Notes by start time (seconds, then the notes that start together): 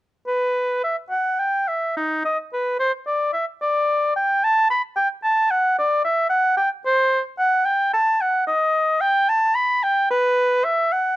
0.27 B4
0.84 E5
1.10 F#5
1.39 G5
1.68 E5
1.97 D#4
2.25 D#5
2.53 B4
2.80 C5
3.07 D5
3.33 E5
3.62 D5
4.16 G5
4.44 A5
4.70 B5
4.96 G5
5.24 A5
5.51 F#5
5.79 D5
6.05 E5
6.30 F#5
6.57 G5
6.86 C5
7.39 F#5
7.66 G5
7.93 A5
8.21 F#5
8.47 D#5
9.01 G5
9.29 A5
9.55 B5
9.83 G5
10.11 B4
10.64 E5
10.92 F#5